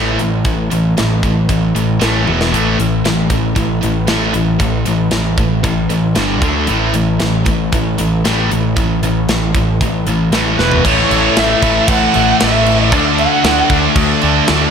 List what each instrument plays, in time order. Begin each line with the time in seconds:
Already playing: picked electric bass A1, distorted electric guitar A2 E3 A3, tonewheel organ A3 E4 B4
0.19 picked electric bass A1, distorted electric guitar A2 E3, closed hi-hat
0.45 picked electric bass A1, distorted electric guitar A2 E3, kick, closed hi-hat
0.70 picked electric bass A1, distorted electric guitar A2 E3, closed hi-hat
0.97 picked electric bass A1, distorted electric guitar A2 E3, snare, closed hi-hat
1.23 distorted electric guitar A2 E3, kick, closed hi-hat
1.49 picked electric bass A1, distorted electric guitar A2 E3, kick, closed hi-hat
1.75 picked electric bass A1, distorted electric guitar A2 E3, closed hi-hat
1.99 picked electric bass A1, distorted electric guitar A2 E3 A3, snare, closed hi-hat
2.26 picked electric bass E1, distorted electric guitar E2 B2 E3, tonewheel organ E3 B3 F#4, high tom
2.41 snare
2.52 picked electric bass A1, distorted electric guitar A2 E3 A3, tonewheel organ A3 E4 B4, closed hi-hat
2.78 picked electric bass A1, distorted electric guitar A2 E3, closed hi-hat
3.04 picked electric bass A1, distorted electric guitar A2 E3, snare, closed hi-hat
3.30 distorted electric guitar A2 E3, kick, closed hi-hat
3.55 picked electric bass A1, distorted electric guitar A2 E3, kick, closed hi-hat
3.81 picked electric bass A1, distorted electric guitar A2 E3, closed hi-hat
4.07 picked electric bass A1, distorted electric guitar A2 E3 A3, snare, closed hi-hat
4.34 picked electric bass A1, distorted electric guitar A2 E3, closed hi-hat
4.59 picked electric bass A1, distorted electric guitar A2 E3, kick, closed hi-hat
4.86 picked electric bass A1, distorted electric guitar A2 E3, closed hi-hat
5.11 picked electric bass A1, distorted electric guitar A2 E3, snare, closed hi-hat
5.38 distorted electric guitar A2 E3, kick, closed hi-hat
5.63 picked electric bass A1, distorted electric guitar A2 E3, kick, closed hi-hat
5.89 picked electric bass A1, distorted electric guitar A2 E3, closed hi-hat
6.15 picked electric bass G1, distorted electric guitar G2 D3 G3, tonewheel organ G3 D4 A4, snare, closed hi-hat
6.41 picked electric bass D2, distorted electric guitar D3 A3 D4, tonewheel organ A4 E5, kick, closed hi-hat
6.66 picked electric bass A1, distorted electric guitar A2 E3 A3, tonewheel organ A3 E4 B4, closed hi-hat
6.93 picked electric bass A1, distorted electric guitar A2 E3, closed hi-hat
7.19 picked electric bass A1, distorted electric guitar A2 E3, snare, closed hi-hat
7.45 distorted electric guitar A2 E3, kick, closed hi-hat
7.72 picked electric bass A1, distorted electric guitar A2 E3, kick, closed hi-hat
7.98 picked electric bass A1, distorted electric guitar A2 E3, closed hi-hat
8.24 picked electric bass A1, distorted electric guitar A2 E3 A3, snare, closed hi-hat
8.51 picked electric bass A1, distorted electric guitar A2 E3, closed hi-hat
8.76 picked electric bass A1, distorted electric guitar A2 E3, kick, closed hi-hat
9.02 picked electric bass A1, distorted electric guitar A2 E3, closed hi-hat
9.28 picked electric bass A1, distorted electric guitar A2 E3, snare, closed hi-hat
9.54 distorted electric guitar A2 E3, kick, closed hi-hat
9.81 picked electric bass A1, distorted electric guitar A2 E3, kick, closed hi-hat
10.07 picked electric bass A1, distorted electric guitar A2 E3, closed hi-hat
10.32 picked electric bass A1, distorted electric guitar A2 E3 A3, snare, closed hi-hat
10.58 picked electric bass E1, distorted electric guitar E2 B2 E3, tonewheel organ E3 B3 F#4, lead electric guitar B4, snare
10.71 floor tom
10.85 picked electric bass A1, distorted electric guitar A2 E3 A3, tonewheel organ A3 E4 B4, lead electric guitar C#5, kick, crash
11.11 picked electric bass A1, crash
11.36 picked electric bass A1, lead electric guitar E5, snare, crash
11.62 picked electric bass A1, distorted electric guitar A2 E3 A3, kick, crash
11.88 picked electric bass A1, lead electric guitar F#5, kick, crash
12.14 picked electric bass A1, distorted electric guitar A2 E3 A3, crash
12.40 picked electric bass A1, distorted electric guitar A2 E3 A3, lead electric guitar E5, snare, crash
12.66 crash
12.92 picked electric bass D2, distorted electric guitar D3 A3 D4, tonewheel organ D4 A4 E5, lead electric guitar D5, kick, crash
13.18 lead electric guitar F#5, crash
13.44 picked electric bass D2, snare, crash
13.70 picked electric bass D2, distorted electric guitar D3 A3 D4, kick, crash
13.95 picked electric bass D2, kick, crash
14.22 picked electric bass D2, distorted electric guitar D3 A3 D4, crash
14.47 picked electric bass D2, distorted electric guitar D3 A3 D4, snare, crash